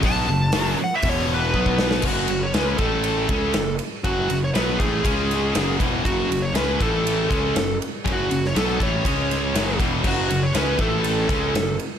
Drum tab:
CC |----------------|x---------------|----------------|----------------|
RD |----------------|--x-x-x-x-x-x-x-|x-x-x-x-x-x-x-x-|x-x-x-x-x-x-x-x-|
HH |o---o---o-------|----------------|----------------|----------------|
SD |----o---------oo|----o-------o---|----o-----o-o---|----o-------o---|
BD |o-------o---oo--|o-----o---o-----|o-----o-o-----o-|o-----o---o-----|

CC |----------------|x---------------|
RD |x-x-x-x-x-x-x-x-|--x-x-x-x-x-x-x-|
HH |----------------|----------------|
SD |---oo-----o-o---|----o-----o-o---|
BD |o-----o-o-----o-|o-----o---o-----|